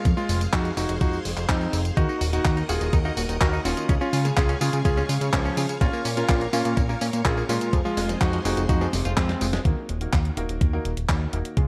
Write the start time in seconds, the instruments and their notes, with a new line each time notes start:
Already playing: string machine F5
0.05 analog synth bass F2, string machine G#4 C5 C6, kick, closed hi-hat, tambourine
0.17 electric grand piano G#3 F4, tambourine
0.29 analog synth bass F1, open hi-hat, tambourine
0.41 closed hi-hat, tambourine
0.53 analog synth bass F2, electric grand piano D#4 F#4, kick, clap, closed hi-hat, tambourine
0.65 closed hi-hat, tambourine
0.77 analog synth bass F1, electric grand piano D#4 F#4, open hi-hat, tambourine
0.89 analog synth bass F1, closed hi-hat, tambourine
1.01 analog synth bass F2, electric grand piano D#4 F#4, kick, closed hi-hat, tambourine
1.13 tambourine
1.25 analog synth bass F1, open hi-hat, tambourine
1.37 analog synth bass F1, clap, closed hi-hat, tambourine
1.49 analog synth bass F2, electric grand piano C4 D#4, kick, clap, closed hi-hat, tambourine
1.61 tambourine
1.73 analog synth bass F1, open hi-hat, tambourine
1.85 closed hi-hat, tambourine
1.97 analog synth bass D#2, grand piano A#3 D#4 F#4 A#4, clean electric guitar D#4, electric grand piano D#4 F#4, string machine A#4 D#5 F#5 D#6, kick, closed hi-hat, tambourine
2.09 clean electric guitar D#4, tambourine
2.21 analog synth bass D#1, clean electric guitar F#4, open hi-hat, tambourine
2.33 clean electric guitar D#3, grand piano A#3 D#4 F#4 A#4, electric grand piano D#4 F#4, closed hi-hat, tambourine
2.45 analog synth bass D#2, clean electric guitar D#4, kick, clap, closed hi-hat, tambourine
2.57 clean electric guitar D#4, closed hi-hat, tambourine
2.69 analog synth bass D#1, grand piano A#3 D#4 F#4 A#4, electric grand piano F4 G#4, clean electric guitar F#4, open hi-hat, tambourine
2.81 analog synth bass D#1, clean electric guitar D#3, closed hi-hat, tambourine
2.93 analog synth bass D#2, clean electric guitar D#4, kick, closed hi-hat, tambourine
3.05 grand piano A#3 D#4 F#4 A#4, clean electric guitar D#4, tambourine
3.17 analog synth bass D#1, clean electric guitar F#4, open hi-hat, tambourine
3.29 analog synth bass D#1, clean electric guitar D#3, closed hi-hat, tambourine
3.41 analog synth bass D#2, grand piano A#3 D#4 F#4 C#5, clean electric guitar D#4, electric grand piano F#4 A#4, kick, clap, closed hi-hat, tambourine
3.53 clean electric guitar D#4, tambourine
3.65 analog synth bass D#1, grand piano A#3 D#4 F#4 A#4, electric grand piano C#4 F4, clean electric guitar F#4, open hi-hat, tambourine
3.77 clean electric guitar D#3, closed hi-hat, tambourine
3.89 analog synth bass C#2, grand piano G#3 C#4 F4 G#4, clean electric guitar C#4, string machine G#4 C#5 F5 C#6, kick, closed hi-hat, tambourine
4.01 electric grand piano C#4 F4, clean electric guitar C#4, tambourine
4.13 analog synth bass C#3, clean electric guitar F4, open hi-hat, tambourine
4.25 clean electric guitar C#3, grand piano G#3 C#4 F4 G#4, closed hi-hat, tambourine
4.37 analog synth bass C#2, clean electric guitar C#4, electric grand piano F4 G#4, kick, clap, closed hi-hat, tambourine
4.49 clean electric guitar C#4, closed hi-hat, tambourine
4.61 analog synth bass C#3, grand piano G#3 C#4 F4 G#4, electric grand piano F4 G#4, clean electric guitar F4, open hi-hat, tambourine
4.73 analog synth bass C#3, clean electric guitar C#3, closed hi-hat, tambourine
4.85 analog synth bass C#2, clean electric guitar C#4, electric grand piano F4 G#4, kick, closed hi-hat, tambourine
4.97 grand piano G#3 C#4 F4 G#4, clean electric guitar C#4, tambourine
5.09 analog synth bass C#3, clean electric guitar F4, open hi-hat, tambourine
5.21 analog synth bass C#3, clean electric guitar C#3, closed hi-hat, tambourine
5.33 analog synth bass C#2, electric grand piano F3 C#4, grand piano G#3 C#4 F4 C#5, clean electric guitar C#4, kick, clap, closed hi-hat, tambourine
5.45 clean electric guitar C#4, tambourine
5.57 analog synth bass C#3, grand piano G#3 C#4 F4 G#4, clean electric guitar F4, open hi-hat, tambourine
5.69 clean electric guitar C#3, closed hi-hat, tambourine
5.81 analog synth bass A#1, grand piano A#3 C#4 F4 A#4, clean electric guitar A#3, electric grand piano C#4 F4, string machine A#4, kick, closed hi-hat, tambourine
5.93 clean electric guitar A#3, tambourine
6.05 analog synth bass A#2, clean electric guitar C#4, open hi-hat, tambourine
6.17 clean electric guitar A#2, grand piano A#3 C#4 F4 A#4, electric grand piano C#4 F4, closed hi-hat, tambourine
6.29 analog synth bass A#1, clean electric guitar A#3, kick, clap, closed hi-hat, tambourine
6.41 clean electric guitar A#3, closed hi-hat, tambourine
6.53 analog synth bass A#2, grand piano A#3 C#4 F4 A#4, electric grand piano C#4 F4, clean electric guitar C#4, open hi-hat, tambourine
6.65 analog synth bass A#2, clean electric guitar A#2, closed hi-hat, tambourine
6.77 analog synth bass A#1, clean electric guitar A#3, kick, closed hi-hat, tambourine
6.89 grand piano A#3 C#4 F4 A#4, clean electric guitar A#3, tambourine
7.01 analog synth bass A#2, clean electric guitar C#4, open hi-hat, tambourine
7.13 analog synth bass A#2, clean electric guitar A#2, closed hi-hat, tambourine
7.25 analog synth bass A#1, grand piano A#3 C#4 F4 C#5, clean electric guitar A#3, electric grand piano F4 G#4, kick, clap, closed hi-hat, tambourine
7.37 clean electric guitar A#3, tambourine
7.49 analog synth bass A#2, electric grand piano G#3 F4, grand piano A#3 C#4 F4 A#4, clean electric guitar C#4, open hi-hat, tambourine
7.61 clean electric guitar A#2, closed hi-hat, tambourine
7.73 analog synth bass F2, clean electric guitar F3, grand piano G#3 C4 F4 G#4, string machine G#4 C5 C6, kick, closed hi-hat, tambourine
7.85 clean electric guitar F3, electric grand piano G#3 F4, tambourine
7.97 analog synth bass F1, clean electric guitar G#3, open hi-hat, tambourine
8.09 clean electric guitar F2, grand piano G#3 C4 F4 G#4, closed hi-hat, tambourine
8.21 analog synth bass F2, clean electric guitar F3, electric grand piano D#4 F#4, kick, clap, closed hi-hat, tambourine
8.33 clean electric guitar F3, closed hi-hat, tambourine
8.45 analog synth bass F1, grand piano G#3 C4 F4 G#4, clean electric guitar G#3, electric grand piano D#4 F#4, open hi-hat, tambourine
8.57 analog synth bass F1, clean electric guitar F2, closed hi-hat, tambourine
8.69 analog synth bass F2, clean electric guitar F3, electric grand piano D#4 F#4, kick, closed hi-hat, tambourine
8.81 clean electric guitar F3, grand piano G#3 C4 F4 G#4, tambourine
8.93 analog synth bass F1, clean electric guitar C3, snare, open hi-hat, tambourine
9.05 analog synth bass F1, grand piano G#3 C4 F4 C5, clean electric guitar F4, closed hi-hat, tambourine
9.17 analog synth bass F2, electric grand piano G#3 C4, clean electric guitar F4, kick, snare, clap, closed hi-hat, tambourine
9.29 clean electric guitar C4, snare, closed hi-hat, tambourine
9.41 analog synth bass F1, grand piano G#3 C4 F4 C5, clean electric guitar G#3, open hi-hat, tambourine
9.53 clean electric guitar G#3, snare, closed hi-hat, tambourine
9.65 analog synth bass D#2, grand piano A#3 D#4 F#4 A#4, kick, closed hi-hat
9.89 analog synth bass D#1, closed hi-hat
10.01 grand piano A#3 D#4 F#4 A#4, closed hi-hat
10.13 analog synth bass D#2, kick, clap, closed hi-hat
10.25 closed hi-hat
10.37 analog synth bass D#1, grand piano A#3 D#4 F#4 A#4, closed hi-hat
10.49 analog synth bass D#1, closed hi-hat
10.61 analog synth bass D#2, kick, closed hi-hat
10.73 grand piano A#3 D#4 F#4 A#4
10.85 analog synth bass D#1, closed hi-hat
10.97 analog synth bass D#1, closed hi-hat
11.09 analog synth bass D#2, grand piano A#3 D#4 F#4 C#5, kick, clap, closed hi-hat
11.33 analog synth bass D#1, grand piano A#3 D#4 F#4 A#4, closed hi-hat
11.45 closed hi-hat
11.57 analog synth bass C#2, grand piano G#3 C#4 F4 G#4, kick, closed hi-hat